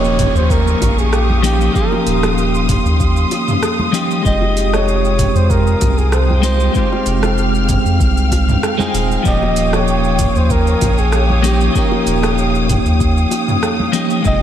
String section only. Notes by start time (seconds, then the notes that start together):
Already playing: G4 F5 C#6 D#6
1.76 C6
4.25 G#3 F5 G5
6.74 F6
9.26 C#5 D#6
14.25 G#3